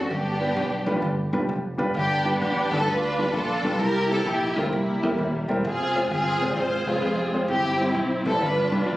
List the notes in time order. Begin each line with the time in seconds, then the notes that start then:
Already playing: F#4
0.10 G1 G2 B3 D4 G4
0.41 G3 D4 F4 B4
0.56 B1
0.86 A1 G3 D4 F4 B4
0.95 G3 D4 F4 B4
1.02 G1
1.32 B1 G3 D4 F4 B4
1.39 G3 D4 F4 G4
1.48 F1
1.78 F#1 G3 D4 F4 B4
1.94 G1 G2 B3 D4 G4
2.25 G3 D4 F4 B4
2.41 A1 G4
2.71 G1 G3 D4 F4 A4 B4
2.80 G3 D4 F4 B4
2.87 D2 D4 F4 B4
3.18 G3 D4 F4 B4
3.26 G3 D4 F4 B4
3.33 A#1 D4 F4 A4
3.63 B1 G3 D4 F4 B4
3.79 C2 C3 E4 G4 A#4
4.10 G3 C4 E4 A4 A#4
4.25 A#1 G4
4.56 D2 G3 C4 E4 F4 A#4
4.65 G3 C4 E4 A#4
4.73 C2 C3 G3 A#3 E4
5.03 E2 G3 C4 E4 A#4
5.11 G3 C4 E4 A#4
5.18 D#1
5.48 E1 G3 C4 E4 A#4
5.64 F1 C4 F4 G#4
5.95 G#3 C4 F4 C5
6.11 G1 C4 F4 G#4
6.40 F1 G#3 C4 F4 C5
6.50 G#3 C4 F4 D5
6.56 G#1 F4 G#4 C5
6.86 F1 G#3 C4 F4 C5
6.95 G#3 C4 F4 B4
7.02 F2
7.33 G#3 C4 F4 C5
7.48 G1 G2 C4 E4 G4
7.80 G3 C4 E4 C5
7.94 B1
8.25 A1 G3 C4 E4 A4 B4
8.34 G3 C4 E4 D5
8.41 G1 G2 D4 F4 B4
8.71 C2 G3 D4 F4 B4
8.79 G3 D4 F4 D5
8.88 A#1